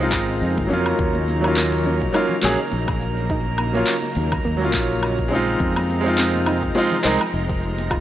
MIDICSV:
0, 0, Header, 1, 7, 480
1, 0, Start_track
1, 0, Tempo, 576923
1, 824, Time_signature, 4, 2, 24, 8
1, 6658, End_track
2, 0, Start_track
2, 0, Title_t, "Synth texture"
2, 0, Program_c, 0, 99
2, 0, Note_on_c, 0, 70, 78
2, 0, Note_on_c, 0, 82, 79
2, 6658, Note_off_c, 0, 70, 0
2, 6658, Note_off_c, 0, 82, 0
2, 6658, End_track
3, 0, Start_track
3, 0, Title_t, "Synth arpeggio sound"
3, 0, Program_c, 1, 84
3, 582, Note_on_c, 1, 61, 76
3, 726, Note_off_c, 1, 61, 0
3, 1306, Note_on_c, 1, 58, 77
3, 1448, Note_off_c, 1, 58, 0
3, 1548, Note_on_c, 1, 61, 74
3, 1689, Note_off_c, 1, 61, 0
3, 1786, Note_on_c, 1, 63, 85
3, 1928, Note_off_c, 1, 63, 0
3, 2750, Note_on_c, 1, 63, 80
3, 2965, Note_off_c, 1, 63, 0
3, 3702, Note_on_c, 1, 58, 82
3, 3847, Note_off_c, 1, 58, 0
3, 4422, Note_on_c, 1, 61, 76
3, 4566, Note_off_c, 1, 61, 0
3, 5144, Note_on_c, 1, 60, 73
3, 5287, Note_off_c, 1, 60, 0
3, 5386, Note_on_c, 1, 63, 74
3, 5528, Note_off_c, 1, 63, 0
3, 5620, Note_on_c, 1, 65, 79
3, 5766, Note_off_c, 1, 65, 0
3, 6580, Note_on_c, 1, 65, 83
3, 6658, Note_off_c, 1, 65, 0
3, 6658, End_track
4, 0, Start_track
4, 0, Title_t, "Grand piano"
4, 0, Program_c, 2, 0
4, 0, Note_on_c, 2, 56, 68
4, 0, Note_on_c, 2, 60, 60
4, 3, Note_on_c, 2, 63, 62
4, 23, Note_on_c, 2, 65, 77
4, 540, Note_off_c, 2, 56, 0
4, 551, Note_off_c, 2, 60, 0
4, 555, Note_on_c, 2, 54, 71
4, 561, Note_off_c, 2, 63, 0
4, 570, Note_off_c, 2, 65, 0
4, 576, Note_on_c, 2, 58, 68
4, 594, Note_on_c, 2, 61, 68
4, 610, Note_on_c, 2, 65, 83
4, 1152, Note_off_c, 2, 54, 0
4, 1162, Note_off_c, 2, 58, 0
4, 1172, Note_off_c, 2, 61, 0
4, 1172, Note_on_c, 2, 54, 72
4, 1180, Note_off_c, 2, 65, 0
4, 1189, Note_on_c, 2, 58, 64
4, 1212, Note_on_c, 2, 61, 66
4, 1228, Note_on_c, 2, 65, 81
4, 1745, Note_off_c, 2, 54, 0
4, 1753, Note_off_c, 2, 58, 0
4, 1765, Note_off_c, 2, 61, 0
4, 1767, Note_on_c, 2, 54, 85
4, 1773, Note_off_c, 2, 65, 0
4, 1778, Note_on_c, 2, 58, 88
4, 1787, Note_on_c, 2, 61, 83
4, 1797, Note_on_c, 2, 65, 100
4, 1935, Note_off_c, 2, 54, 0
4, 1940, Note_off_c, 2, 58, 0
4, 1945, Note_off_c, 2, 61, 0
4, 1950, Note_off_c, 2, 65, 0
4, 2008, Note_on_c, 2, 54, 92
4, 2018, Note_on_c, 2, 58, 83
4, 2030, Note_on_c, 2, 61, 88
4, 2037, Note_on_c, 2, 68, 98
4, 2128, Note_off_c, 2, 54, 0
4, 2133, Note_off_c, 2, 58, 0
4, 2140, Note_off_c, 2, 61, 0
4, 2143, Note_off_c, 2, 68, 0
4, 3101, Note_on_c, 2, 54, 68
4, 3114, Note_on_c, 2, 58, 68
4, 3122, Note_on_c, 2, 61, 66
4, 3132, Note_on_c, 2, 65, 81
4, 3260, Note_off_c, 2, 54, 0
4, 3266, Note_off_c, 2, 58, 0
4, 3270, Note_off_c, 2, 61, 0
4, 3275, Note_off_c, 2, 65, 0
4, 3800, Note_on_c, 2, 54, 75
4, 3823, Note_on_c, 2, 58, 67
4, 3841, Note_on_c, 2, 61, 70
4, 3864, Note_on_c, 2, 65, 77
4, 4379, Note_off_c, 2, 54, 0
4, 4390, Note_off_c, 2, 58, 0
4, 4395, Note_on_c, 2, 56, 74
4, 4399, Note_off_c, 2, 61, 0
4, 4411, Note_off_c, 2, 65, 0
4, 4415, Note_on_c, 2, 60, 72
4, 4436, Note_on_c, 2, 63, 72
4, 4451, Note_on_c, 2, 65, 84
4, 4987, Note_off_c, 2, 56, 0
4, 5000, Note_on_c, 2, 56, 69
4, 5002, Note_off_c, 2, 60, 0
4, 5012, Note_off_c, 2, 63, 0
4, 5020, Note_off_c, 2, 65, 0
4, 5023, Note_on_c, 2, 60, 64
4, 5041, Note_on_c, 2, 63, 66
4, 5059, Note_on_c, 2, 65, 83
4, 5579, Note_off_c, 2, 56, 0
4, 5590, Note_off_c, 2, 60, 0
4, 5599, Note_off_c, 2, 63, 0
4, 5608, Note_off_c, 2, 65, 0
4, 5615, Note_on_c, 2, 56, 92
4, 5623, Note_on_c, 2, 60, 83
4, 5635, Note_on_c, 2, 63, 90
4, 5643, Note_on_c, 2, 65, 102
4, 5779, Note_off_c, 2, 56, 0
4, 5783, Note_off_c, 2, 60, 0
4, 5789, Note_off_c, 2, 63, 0
4, 5793, Note_off_c, 2, 65, 0
4, 5846, Note_on_c, 2, 56, 94
4, 5856, Note_on_c, 2, 60, 87
4, 5866, Note_on_c, 2, 63, 90
4, 5874, Note_on_c, 2, 70, 102
4, 5968, Note_off_c, 2, 56, 0
4, 5973, Note_off_c, 2, 60, 0
4, 5978, Note_off_c, 2, 63, 0
4, 5982, Note_off_c, 2, 70, 0
4, 6658, End_track
5, 0, Start_track
5, 0, Title_t, "String machine"
5, 0, Program_c, 3, 50
5, 0, Note_on_c, 3, 49, 80
5, 0, Note_on_c, 3, 53, 72
5, 0, Note_on_c, 3, 63, 87
5, 789, Note_off_c, 3, 53, 0
5, 829, Note_on_c, 3, 58, 72
5, 830, Note_on_c, 3, 54, 71
5, 4630, Note_off_c, 3, 63, 0
5, 4632, Note_off_c, 3, 49, 0
5, 4633, Note_off_c, 3, 54, 0
5, 4633, Note_off_c, 3, 58, 0
5, 4666, Note_on_c, 3, 48, 79
5, 4669, Note_on_c, 3, 56, 73
5, 4670, Note_on_c, 3, 63, 85
5, 4671, Note_on_c, 3, 53, 74
5, 6658, Note_off_c, 3, 48, 0
5, 6658, Note_off_c, 3, 53, 0
5, 6658, Note_off_c, 3, 56, 0
5, 6658, Note_off_c, 3, 63, 0
5, 6658, End_track
6, 0, Start_track
6, 0, Title_t, "Fretless electric bass"
6, 0, Program_c, 4, 35
6, 0, Note_on_c, 4, 37, 77
6, 104, Note_off_c, 4, 37, 0
6, 104, Note_on_c, 4, 32, 83
6, 343, Note_off_c, 4, 32, 0
6, 348, Note_on_c, 4, 41, 83
6, 480, Note_on_c, 4, 32, 74
6, 492, Note_off_c, 4, 41, 0
6, 553, Note_off_c, 4, 32, 0
6, 590, Note_on_c, 4, 41, 81
6, 765, Note_off_c, 4, 41, 0
6, 827, Note_on_c, 4, 39, 93
6, 1736, Note_off_c, 4, 39, 0
6, 2029, Note_on_c, 4, 34, 94
6, 2122, Note_off_c, 4, 34, 0
6, 2268, Note_on_c, 4, 34, 81
6, 3177, Note_off_c, 4, 34, 0
6, 3465, Note_on_c, 4, 39, 98
6, 3643, Note_off_c, 4, 39, 0
6, 3702, Note_on_c, 4, 39, 78
6, 3940, Note_off_c, 4, 39, 0
6, 3940, Note_on_c, 4, 34, 89
6, 4613, Note_off_c, 4, 34, 0
6, 4661, Note_on_c, 4, 41, 99
6, 5573, Note_off_c, 4, 41, 0
6, 5865, Note_on_c, 4, 36, 86
6, 5960, Note_off_c, 4, 36, 0
6, 6103, Note_on_c, 4, 29, 83
6, 6658, Note_off_c, 4, 29, 0
6, 6658, End_track
7, 0, Start_track
7, 0, Title_t, "Drums"
7, 101, Note_on_c, 9, 39, 70
7, 101, Note_on_c, 9, 77, 66
7, 104, Note_on_c, 9, 36, 105
7, 108, Note_on_c, 9, 82, 75
7, 184, Note_off_c, 9, 39, 0
7, 184, Note_off_c, 9, 77, 0
7, 187, Note_off_c, 9, 36, 0
7, 191, Note_off_c, 9, 82, 0
7, 241, Note_on_c, 9, 82, 46
7, 325, Note_off_c, 9, 82, 0
7, 350, Note_on_c, 9, 82, 33
7, 434, Note_off_c, 9, 82, 0
7, 479, Note_on_c, 9, 36, 65
7, 480, Note_on_c, 9, 62, 69
7, 563, Note_off_c, 9, 36, 0
7, 563, Note_off_c, 9, 62, 0
7, 589, Note_on_c, 9, 82, 81
7, 672, Note_off_c, 9, 82, 0
7, 715, Note_on_c, 9, 77, 72
7, 722, Note_on_c, 9, 82, 48
7, 799, Note_off_c, 9, 77, 0
7, 805, Note_off_c, 9, 82, 0
7, 824, Note_on_c, 9, 36, 114
7, 831, Note_on_c, 9, 82, 35
7, 907, Note_off_c, 9, 36, 0
7, 914, Note_off_c, 9, 82, 0
7, 957, Note_on_c, 9, 62, 51
7, 1040, Note_off_c, 9, 62, 0
7, 1064, Note_on_c, 9, 63, 54
7, 1070, Note_on_c, 9, 82, 79
7, 1147, Note_off_c, 9, 63, 0
7, 1153, Note_off_c, 9, 82, 0
7, 1200, Note_on_c, 9, 77, 78
7, 1206, Note_on_c, 9, 82, 39
7, 1283, Note_off_c, 9, 77, 0
7, 1289, Note_off_c, 9, 82, 0
7, 1303, Note_on_c, 9, 39, 72
7, 1309, Note_on_c, 9, 82, 32
7, 1386, Note_off_c, 9, 39, 0
7, 1392, Note_off_c, 9, 82, 0
7, 1432, Note_on_c, 9, 62, 76
7, 1433, Note_on_c, 9, 63, 65
7, 1515, Note_off_c, 9, 62, 0
7, 1517, Note_off_c, 9, 63, 0
7, 1534, Note_on_c, 9, 64, 74
7, 1545, Note_on_c, 9, 82, 73
7, 1617, Note_off_c, 9, 64, 0
7, 1628, Note_off_c, 9, 82, 0
7, 1678, Note_on_c, 9, 36, 58
7, 1682, Note_on_c, 9, 82, 42
7, 1761, Note_off_c, 9, 36, 0
7, 1766, Note_off_c, 9, 82, 0
7, 1783, Note_on_c, 9, 62, 47
7, 1783, Note_on_c, 9, 77, 75
7, 1789, Note_on_c, 9, 82, 30
7, 1866, Note_off_c, 9, 62, 0
7, 1866, Note_off_c, 9, 77, 0
7, 1872, Note_off_c, 9, 82, 0
7, 1906, Note_on_c, 9, 64, 79
7, 1989, Note_off_c, 9, 64, 0
7, 2019, Note_on_c, 9, 39, 69
7, 2025, Note_on_c, 9, 82, 71
7, 2102, Note_off_c, 9, 39, 0
7, 2109, Note_off_c, 9, 82, 0
7, 2159, Note_on_c, 9, 82, 47
7, 2242, Note_off_c, 9, 82, 0
7, 2258, Note_on_c, 9, 62, 71
7, 2266, Note_on_c, 9, 82, 32
7, 2341, Note_off_c, 9, 62, 0
7, 2349, Note_off_c, 9, 82, 0
7, 2395, Note_on_c, 9, 77, 68
7, 2398, Note_on_c, 9, 36, 109
7, 2479, Note_off_c, 9, 77, 0
7, 2482, Note_off_c, 9, 36, 0
7, 2506, Note_on_c, 9, 82, 77
7, 2590, Note_off_c, 9, 82, 0
7, 2637, Note_on_c, 9, 62, 43
7, 2643, Note_on_c, 9, 82, 46
7, 2720, Note_off_c, 9, 62, 0
7, 2726, Note_off_c, 9, 82, 0
7, 2743, Note_on_c, 9, 36, 110
7, 2747, Note_on_c, 9, 82, 33
7, 2826, Note_off_c, 9, 36, 0
7, 2831, Note_off_c, 9, 82, 0
7, 2978, Note_on_c, 9, 77, 81
7, 2982, Note_on_c, 9, 63, 54
7, 2985, Note_on_c, 9, 82, 70
7, 3062, Note_off_c, 9, 77, 0
7, 3065, Note_off_c, 9, 63, 0
7, 3068, Note_off_c, 9, 82, 0
7, 3121, Note_on_c, 9, 82, 40
7, 3122, Note_on_c, 9, 62, 81
7, 3204, Note_off_c, 9, 82, 0
7, 3205, Note_off_c, 9, 62, 0
7, 3218, Note_on_c, 9, 39, 72
7, 3224, Note_on_c, 9, 82, 30
7, 3301, Note_off_c, 9, 39, 0
7, 3308, Note_off_c, 9, 82, 0
7, 3351, Note_on_c, 9, 63, 56
7, 3434, Note_off_c, 9, 63, 0
7, 3456, Note_on_c, 9, 62, 54
7, 3462, Note_on_c, 9, 82, 73
7, 3539, Note_off_c, 9, 62, 0
7, 3545, Note_off_c, 9, 82, 0
7, 3594, Note_on_c, 9, 77, 76
7, 3598, Note_on_c, 9, 36, 103
7, 3601, Note_on_c, 9, 82, 39
7, 3678, Note_off_c, 9, 77, 0
7, 3681, Note_off_c, 9, 36, 0
7, 3684, Note_off_c, 9, 82, 0
7, 3708, Note_on_c, 9, 82, 28
7, 3791, Note_off_c, 9, 82, 0
7, 3934, Note_on_c, 9, 62, 71
7, 3940, Note_on_c, 9, 39, 73
7, 3941, Note_on_c, 9, 36, 99
7, 3946, Note_on_c, 9, 82, 71
7, 4017, Note_off_c, 9, 62, 0
7, 4023, Note_off_c, 9, 39, 0
7, 4024, Note_off_c, 9, 36, 0
7, 4030, Note_off_c, 9, 82, 0
7, 4080, Note_on_c, 9, 82, 42
7, 4164, Note_off_c, 9, 82, 0
7, 4183, Note_on_c, 9, 77, 79
7, 4189, Note_on_c, 9, 82, 32
7, 4266, Note_off_c, 9, 77, 0
7, 4272, Note_off_c, 9, 82, 0
7, 4311, Note_on_c, 9, 62, 50
7, 4317, Note_on_c, 9, 36, 57
7, 4394, Note_off_c, 9, 62, 0
7, 4400, Note_off_c, 9, 36, 0
7, 4425, Note_on_c, 9, 82, 73
7, 4509, Note_off_c, 9, 82, 0
7, 4562, Note_on_c, 9, 82, 43
7, 4646, Note_off_c, 9, 82, 0
7, 4660, Note_on_c, 9, 36, 111
7, 4669, Note_on_c, 9, 82, 32
7, 4743, Note_off_c, 9, 36, 0
7, 4753, Note_off_c, 9, 82, 0
7, 4796, Note_on_c, 9, 77, 76
7, 4799, Note_on_c, 9, 62, 73
7, 4879, Note_off_c, 9, 77, 0
7, 4882, Note_off_c, 9, 62, 0
7, 4900, Note_on_c, 9, 63, 50
7, 4906, Note_on_c, 9, 82, 74
7, 4984, Note_off_c, 9, 63, 0
7, 4989, Note_off_c, 9, 82, 0
7, 5044, Note_on_c, 9, 82, 39
7, 5128, Note_off_c, 9, 82, 0
7, 5139, Note_on_c, 9, 62, 51
7, 5142, Note_on_c, 9, 39, 75
7, 5149, Note_on_c, 9, 82, 32
7, 5222, Note_off_c, 9, 62, 0
7, 5226, Note_off_c, 9, 39, 0
7, 5232, Note_off_c, 9, 82, 0
7, 5274, Note_on_c, 9, 63, 68
7, 5358, Note_off_c, 9, 63, 0
7, 5378, Note_on_c, 9, 77, 82
7, 5380, Note_on_c, 9, 64, 67
7, 5384, Note_on_c, 9, 82, 69
7, 5461, Note_off_c, 9, 77, 0
7, 5464, Note_off_c, 9, 64, 0
7, 5468, Note_off_c, 9, 82, 0
7, 5515, Note_on_c, 9, 36, 58
7, 5523, Note_on_c, 9, 82, 42
7, 5599, Note_off_c, 9, 36, 0
7, 5606, Note_off_c, 9, 82, 0
7, 5615, Note_on_c, 9, 62, 80
7, 5632, Note_on_c, 9, 82, 31
7, 5698, Note_off_c, 9, 62, 0
7, 5715, Note_off_c, 9, 82, 0
7, 5755, Note_on_c, 9, 64, 94
7, 5838, Note_off_c, 9, 64, 0
7, 5860, Note_on_c, 9, 39, 66
7, 5867, Note_on_c, 9, 82, 68
7, 5944, Note_off_c, 9, 39, 0
7, 5950, Note_off_c, 9, 82, 0
7, 5994, Note_on_c, 9, 62, 48
7, 5998, Note_on_c, 9, 77, 90
7, 6004, Note_on_c, 9, 82, 43
7, 6078, Note_off_c, 9, 62, 0
7, 6081, Note_off_c, 9, 77, 0
7, 6087, Note_off_c, 9, 82, 0
7, 6107, Note_on_c, 9, 82, 31
7, 6191, Note_off_c, 9, 82, 0
7, 6235, Note_on_c, 9, 36, 99
7, 6318, Note_off_c, 9, 36, 0
7, 6348, Note_on_c, 9, 82, 68
7, 6431, Note_off_c, 9, 82, 0
7, 6476, Note_on_c, 9, 62, 70
7, 6483, Note_on_c, 9, 82, 41
7, 6559, Note_off_c, 9, 62, 0
7, 6566, Note_off_c, 9, 82, 0
7, 6579, Note_on_c, 9, 36, 115
7, 6580, Note_on_c, 9, 77, 85
7, 6587, Note_on_c, 9, 82, 33
7, 6658, Note_off_c, 9, 36, 0
7, 6658, Note_off_c, 9, 77, 0
7, 6658, Note_off_c, 9, 82, 0
7, 6658, End_track
0, 0, End_of_file